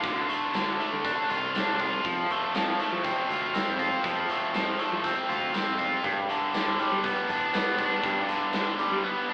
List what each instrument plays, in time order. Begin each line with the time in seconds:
Already playing: overdriven electric guitar A3 D4 F4
0.02 picked electric bass D2, overdriven electric guitar D3, kick, closed hi-hat
0.29 overdriven electric guitar A3, closed hi-hat
0.54 picked electric bass D2, overdriven electric guitar D3, snare, closed hi-hat, tambourine
0.79 overdriven electric guitar A3, closed hi-hat
0.93 picked electric bass D3
1.05 overdriven electric guitar D4, kick, closed hi-hat
1.30 picked electric bass C2, overdriven electric guitar F4, closed hi-hat
1.55 overdriven electric guitar D4, snare, closed hi-hat, tambourine
1.68 picked electric bass C2
1.80 overdriven electric guitar F4, kick, closed hi-hat
2.05 picked electric bass F2, overdriven electric guitar F3, kick, closed hi-hat
2.30 overdriven electric guitar A3, closed hi-hat
2.54 picked electric bass F2, overdriven electric guitar F3, snare, closed hi-hat, tambourine
2.80 overdriven electric guitar A3, closed hi-hat
2.92 picked electric bass F3
3.04 overdriven electric guitar C4, kick, closed hi-hat
3.29 picked electric bass D2, overdriven electric guitar F4, closed hi-hat
3.54 overdriven electric guitar C4, snare, closed hi-hat, tambourine
3.67 picked electric bass F2
3.79 overdriven electric guitar F4, kick, closed hi-hat
4.04 picked electric bass F2, overdriven electric guitar F3, kick, closed hi-hat
4.29 overdriven electric guitar A3, closed hi-hat
4.54 picked electric bass F2, overdriven electric guitar F3, snare, closed hi-hat, tambourine
4.79 overdriven electric guitar A3, closed hi-hat
4.92 picked electric bass F3
5.04 overdriven electric guitar C4, kick, closed hi-hat
5.29 picked electric bass D2, overdriven electric guitar F4, closed hi-hat
5.54 overdriven electric guitar C4, snare, closed hi-hat, tambourine
5.67 picked electric bass F2
5.78 overdriven electric guitar F4, kick, closed hi-hat
6.03 overdriven electric guitar G2, picked electric bass G2, kick, closed hi-hat
6.29 overdriven electric guitar D3, closed hi-hat
6.54 picked electric bass G2, overdriven electric guitar D3, snare, closed hi-hat, tambourine
6.79 overdriven electric guitar G3, closed hi-hat
6.92 picked electric bass G3
7.04 overdriven electric guitar B3, kick, closed hi-hat
7.29 picked electric bass E2, overdriven electric guitar D4, closed hi-hat
7.53 overdriven electric guitar B3, snare, closed hi-hat, tambourine
7.66 picked electric bass G2
7.78 overdriven electric guitar D4, kick, closed hi-hat
7.92 snare
8.03 overdriven electric guitar G2, picked electric bass G2, kick, closed hi-hat
8.28 overdriven electric guitar D3, closed hi-hat
8.53 picked electric bass G2, overdriven electric guitar D3, snare, closed hi-hat, tambourine
8.78 overdriven electric guitar G3, closed hi-hat
8.92 picked electric bass G3
9.03 overdriven electric guitar B3
9.29 overdriven electric guitar D4